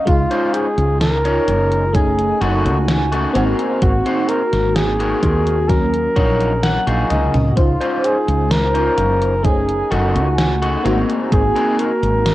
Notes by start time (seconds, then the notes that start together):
0.05 C#2 G#3 D#4 F4, kick, closed hi-hat
0.31 C#4 D#4 F4 C5, closed hi-hat
0.53 G#4, closed hi-hat
0.78 C#2, closed hi-hat
1.00 A#4, muted clean electric guitar stroke, snare, closed hi-hat
1.24 C#4 D#4 F4 C#5, closed hi-hat
1.48 F#1, closed hi-hat
1.72 closed hi-hat
1.93 A3 C#4 D#4 G#4 G#5, kick, closed hi-hat
2.19 closed hi-hat
2.41 F#1 C#4 D#4 F#4 A4, closed hi-hat
2.65 C#2, closed hi-hat
2.88 snare, closed hi-hat
3.12 C#4 D#4 F#4 A4, closed hi-hat
3.33 G#1 A#3 C4 D#4 F#4 G#4 A#4, closed hi-hat
3.59 closed hi-hat
3.82 G#1 F#4, kick, closed hi-hat
4.06 C4 F#4 G#4 C5, closed hi-hat
4.28 A#4, closed hi-hat
4.53 G#1, snare, closed hi-hat
4.75 G#4, muted clean electric guitar stroke, snare, closed hi-hat
4.99 C4 F#4 G#4 A#4, closed hi-hat
5.23 D#2, kick, closed hi-hat
5.47 closed hi-hat
5.68 F#3 A#3 C#4 A#4, kick, snare, closed hi-hat
5.94 closed hi-hat
6.16 A#1 D#4 F4 F#4 C#5, kick, closed hi-hat
6.41 closed hi-hat
6.63 F#5, snare, closed hi-hat
6.87 A#1 D#4 F4 F#4 G#4, closed hi-hat
7.10 C#2 D#5, closed hi-hat, high tom
7.34 C#2, closed hi-hat, mid tom
7.50 F#4
7.56 C#2 G#3 D#4 F4 C5, kick, closed hi-hat
7.80 C#4 D#4 F4 C5, closed hi-hat
8.04 G#4, closed hi-hat
8.28 C#2, closed hi-hat
8.50 A#4, muted clean electric guitar stroke, snare, closed hi-hat
8.74 C#4 D#4 F4 C5, closed hi-hat
8.98 F#1, closed hi-hat
9.22 closed hi-hat
9.43 A3 C#4 D#4 G#4 G#5, kick, closed hi-hat
9.69 closed hi-hat
9.91 F#1 C#4 D#4 F#4 A4, closed hi-hat
10.15 C#2, closed hi-hat
10.38 snare, closed hi-hat
10.62 C#4 D#4 F#4 A4, closed hi-hat
10.84 G#1 A#3 C4 D#4 F#4 G#4 A#4, closed hi-hat
11.10 closed hi-hat
11.32 G#1 G#4, kick, closed hi-hat
11.56 C4 F#4 G#4 A#4, closed hi-hat
11.79 A#4, closed hi-hat
12.03 G#1, closed hi-hat
12.25 muted clean electric guitar stroke, snare, closed hi-hat